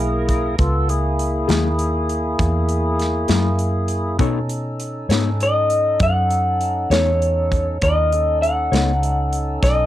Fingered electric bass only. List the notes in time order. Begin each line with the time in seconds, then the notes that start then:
Already playing: B1
0.59 C#2
1.49 D#2
2.39 E2
3.29 F#2
4.19 B2
5.09 G#2
6.00 F#2
6.90 E2
7.82 D#2
8.72 C#2
9.63 B1